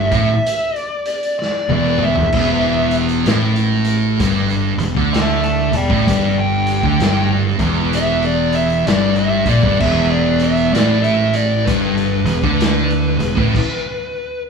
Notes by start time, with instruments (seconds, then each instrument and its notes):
Already playing: distorted electric guitar G2, lead electric guitar E5
0.11 fingered electric bass A1, distorted electric guitar A2, kick, closed hi-hat
0.46 closed hi-hat
0.75 lead electric guitar D5, closed hi-hat
1.06 closed hi-hat
1.23 closed hi-hat
1.39 lead electric guitar D5, snare
1.68 fingered electric bass E1, distorted electric guitar E2, high tom
1.73 lead electric guitar D5
1.98 mid tom
2.04 lead electric guitar E5
2.15 fingered electric bass E1, distorted electric guitar E2, floor tom
2.32 fingered electric bass E1, distorted electric guitar E2, kick, crash
2.64 snare
2.91 closed hi-hat
3.09 closed hi-hat
3.26 fingered electric bass A1, distorted electric guitar A2, snare, closed hi-hat
3.56 closed hi-hat
3.84 closed hi-hat
4.20 fingered electric bass G1, distorted electric guitar G2, kick, closed hi-hat
4.50 closed hi-hat
4.78 fingered electric bass E1, distorted electric guitar E2, closed hi-hat
4.95 fingered electric bass D2, distorted electric guitar D3, kick
5.13 lead electric guitar E5 A5, snare, closed hi-hat
5.43 lead electric guitar E5 A5, closed hi-hat
5.71 fingered electric bass E1, distorted electric guitar E2, closed hi-hat
5.76 lead electric guitar D5 G5
5.89 fingered electric bass A1, distorted electric guitar A2, kick
6.07 fingered electric bass G1, distorted electric guitar G2, lead electric guitar D5 G5, kick, closed hi-hat
6.39 lead electric guitar G5
6.67 closed hi-hat
6.83 fingered electric bass D2, distorted electric guitar D3, kick
7.00 fingered electric bass G1, distorted electric guitar G2, snare, closed hi-hat
7.59 fingered electric bass E1, distorted electric guitar E2, kick, closed hi-hat
7.93 lead electric guitar E5, closed hi-hat
8.23 lead electric guitar D5, closed hi-hat
8.52 lead electric guitar E5, closed hi-hat
8.70 closed hi-hat
8.87 fingered electric bass G1, distorted electric guitar G2, lead electric guitar D5, snare, closed hi-hat
9.16 lead electric guitar E5, closed hi-hat
9.45 fingered electric bass A#1, distorted electric guitar A#2, lead electric guitar D5, kick, closed hi-hat
9.63 fingered electric bass G1, distorted electric guitar G2, kick
9.80 fingered electric bass E1, distorted electric guitar E2, lead electric guitar E5, kick, crash
10.11 lead electric guitar D5
10.39 closed hi-hat
10.43 lead electric guitar E5
10.57 closed hi-hat
10.73 fingered electric bass A1, distorted electric guitar A2, lead electric guitar D5, snare, closed hi-hat
11.03 lead electric guitar E5, closed hi-hat
11.33 lead electric guitar D5, closed hi-hat
11.65 fingered electric bass G1, distorted electric guitar G2, lead electric guitar B4, kick, closed hi-hat
11.97 closed hi-hat
12.24 fingered electric bass E1, distorted electric guitar E2, closed hi-hat
12.43 fingered electric bass D2, distorted electric guitar D3, kick
12.61 snare, closed hi-hat
12.90 closed hi-hat
13.17 fingered electric bass E1, distorted electric guitar E2, closed hi-hat
13.36 fingered electric bass A1, distorted electric guitar A2, kick
13.55 kick, crash